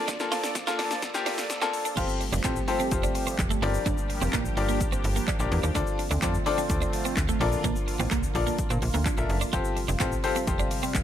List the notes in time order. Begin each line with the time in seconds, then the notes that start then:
Already playing: F3 A#3 D4 F4 A4 D5
0.08 D4, kick, snare, closed hi-hat, shaker
0.20 A#3 D4 F4 A4, snare, shaker
0.32 F4, snare, open hi-hat, shaker
0.44 muted clean electric guitar stroke, snare, shaker
0.55 muted clean electric guitar stroke, kick, snare, closed hi-hat, shaker
0.67 A#3 D4 F4 A4, snare, shaker
0.79 D4, snare, open hi-hat, shaker
0.91 snare, shaker
1.02 kick, snare, closed hi-hat, shaker
1.14 A#3 D4 F4 G4, snare, shaker
1.26 D4, snare, open hi-hat, shaker
1.38 snare, shaker
1.50 snare, closed hi-hat, shaker
1.61 A#3 C4 D4 F4 A4, snare, shaker
1.73 muted clean electric guitar stroke, open hi-hat, shaker
1.85 D4, shaker
1.97 F1 F3 G3 A3 C4 F4 G4 A4 C5, kick, closed hi-hat, crash, shaker
2.09 shaker
2.21 muted clean electric guitar stroke, open hi-hat, shaker
2.33 F1 D4, shaker
2.44 A1 C4 F4 G4 A4 C5, kick, clap, closed hi-hat, shaker
2.56 shaker
2.68 C4 F4 G4 A4 C5, muted clean electric guitar stroke, open hi-hat, shaker
2.80 C4, shaker
2.91 F1 C4 F4 G4 A4 C5, kick, closed hi-hat, shaker
3.03 D4, shaker
3.15 muted clean electric guitar stroke, open hi-hat, shaker
3.27 C4, shaker
3.39 F1, muted clean electric guitar stroke, kick, clap, closed hi-hat, shaker
3.50 A3, shaker
3.62 G1 A#3 C4 D4 F4 G4 A#4 D5, open hi-hat, shaker
3.74 shaker
3.86 G1 D4, kick, closed hi-hat, shaker
3.98 shaker
4.10 muted clean electric guitar stroke, open hi-hat, shaker
4.22 F1 C4, shaker
4.33 A1 A#3, kick, clap, closed hi-hat, shaker
4.45 shaker
4.57 G1 D4 F4 G4 A#4 D5, muted clean electric guitar stroke, open hi-hat, shaker
4.69 A#3, shaker
4.80 A1, kick, closed hi-hat, shaker
4.92 C4, shaker
5.04 G1, muted clean electric guitar stroke, open hi-hat, shaker
5.16 A#3, shaker
5.28 D4, kick, clap, closed hi-hat, shaker
5.40 A#1 D4 F4 G4 A#4 D5, muted clean electric guitar stroke, shaker
5.52 E2, open hi-hat, shaker
5.63 D#2 D4, shaker
5.75 D2 D3 A3 C4 D4 F4 A4 C5 D5, kick, closed hi-hat, shaker
5.87 shaker
5.99 muted clean electric guitar stroke, open hi-hat, shaker
6.11 D2 D4, shaker
6.22 F2 C4 D4 F4 A4 C5 D5, kick, clap, closed hi-hat, shaker
6.34 shaker
6.46 D4 F4 A4 C5 D5, muted clean electric guitar stroke, open hi-hat, shaker
6.58 C4, shaker
6.70 D2 D4 F4 A4 C5 D5, kick, closed hi-hat, shaker
6.81 D4, shaker
6.93 muted clean electric guitar stroke, open hi-hat, shaker
7.05 C4, shaker
7.17 D2, muted clean electric guitar stroke, kick, clap, closed hi-hat, shaker
7.28 A3, shaker
7.40 A#1 A#3 C4 D4 F4 A4 A#4 D5, open hi-hat, shaker
7.52 shaker
7.64 A#1 A#3, kick, closed hi-hat, shaker
7.76 shaker
7.88 muted clean electric guitar stroke, open hi-hat, shaker
8.00 A1 C4, shaker
8.11 C2 A#3, kick, clap, closed hi-hat, shaker
8.23 shaker
8.35 A#1 D4 F4 A4 A#4 D5, muted clean electric guitar stroke, open hi-hat, shaker
8.47 A#3, shaker
8.58 kick, closed hi-hat, shaker
8.70 A#2 C4, shaker
8.82 A#1, muted clean electric guitar stroke, open hi-hat, shaker
8.94 D2 A#3, shaker
9.06 D4, kick, clap, closed hi-hat, shaker
9.17 A#1 D4 F4 A4 A#4 E5, muted clean electric guitar stroke, shaker
9.30 F#1, open hi-hat, shaker
9.41 D4, shaker
9.53 F1 C3 G3 C4 F4 G4 A4 C5, kick, closed hi-hat, shaker
9.65 shaker
9.77 muted clean electric guitar stroke, open hi-hat, shaker
9.88 F1 D4, shaker
10.00 A1 C4 F4 G4 A4 C5, kick, clap, closed hi-hat, shaker
10.12 shaker
10.24 C4 F4 G4 A4 C5, muted clean electric guitar stroke, open hi-hat, shaker
10.36 C4, shaker
10.47 F1 C4 F4 G4 A4 C5, kick, closed hi-hat, shaker
10.59 D4, shaker
10.71 muted clean electric guitar stroke, open hi-hat, shaker
10.83 C4, shaker
10.95 F1, muted clean electric guitar stroke, kick, clap, closed hi-hat, shaker